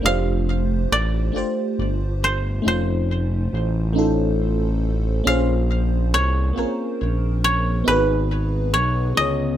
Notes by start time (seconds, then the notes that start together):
0.02 F1 A3 D4 F4 G4 F5
0.07 C5
0.92 A1 D5
1.32 G1 A3 D4 F4
1.36 G4 C5
1.79 G1
2.24 C5
2.62 F1 A3 C#4 D#4
2.66 F4 C5
3.53 A1
3.93 A3 C#4 D#4
3.97 F4 A4
5.24 A#1 A#3 C#4 F4 G#4 F5
5.29 C5
6.14 C2 C#5
6.53 A#3 C4 F4
6.58 A#1 C#4 G#4 A#4
7.02 A#1
7.44 C#5
7.84 G#1 B3 D#4 F#4 B4
7.88 G#4 B4
8.74 B1 C#5
9.15 C#2 D3 B3 F4 D#5
9.19 G#4 C#5